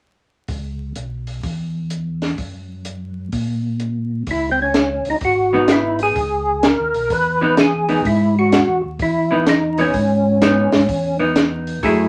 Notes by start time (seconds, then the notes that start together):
0.48 C#2, kick, open hi-hat
0.96 B1, closed hi-hat
1.27 open hi-hat
1.43 E2, kick, open hi-hat
1.90 closed hi-hat
2.22 snare, open hi-hat
2.38 F#2, kick, open hi-hat
2.85 closed hi-hat
3.32 A#2, kick, open hi-hat
3.80 closed hi-hat
4.27 C#2, kick, open hi-hat
4.31 E4
4.52 C4
4.62 C#4
4.74 snare, closed hi-hat
5.05 C#2, open hi-hat
5.10 D#4
5.21 G#1 F#4, kick, open hi-hat
5.53 E3 B3 D#4
5.68 snare, closed hi-hat
5.72 E4
5.99 G#4, open hi-hat
6.16 C#2, kick, open hi-hat
6.63 A#4, snare, closed hi-hat
6.79 D#2
6.94 B1, open hi-hat
7.10 E2 B4, kick, open hi-hat
7.41 E3 B3 D#4
7.57 G#4, snare, closed hi-hat
7.89 E3 B3 D#4, open hi-hat
8.05 G#2 E4, kick, open hi-hat
8.39 F#4
8.52 snare, closed hi-hat
8.68 E2
8.83 D#2
8.99 E2 E4, kick, open hi-hat
9.31 E3 B3 D#4
9.46 D#4, snare, closed hi-hat
9.78 E3 B3 C#4 D#4, open hi-hat
9.94 G#2, kick, open hi-hat
10.42 E3 B3 D#4, snare, closed hi-hat
10.72 G#2, snare, open hi-hat
10.89 E2, kick, open hi-hat
11.19 E3 B3 D#4
11.36 snare, closed hi-hat
11.67 open hi-hat
11.83 F#2 F#3 A3 E4 G#4, kick, open hi-hat